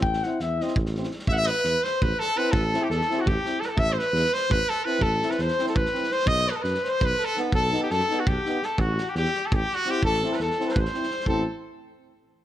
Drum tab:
SD |-oo-o-oo-ooooo|--o-o-o---o---|--o-ooo---o-o-|--o-ooo---o---|
BD |o-------o-----|o-------o-----|o-------o-----|o-------o-----|

SD |--oooooo-ooooo|--o-ooo---o-o-|--o-ooo---o-o-|--o-ooo---o-o-|
BD |o-------o-----|o-------o-----|o-------o-----|o-------o-----|

SD |-ooooooo-ooooo|--------------|
BD |o-------o-----|o-------------|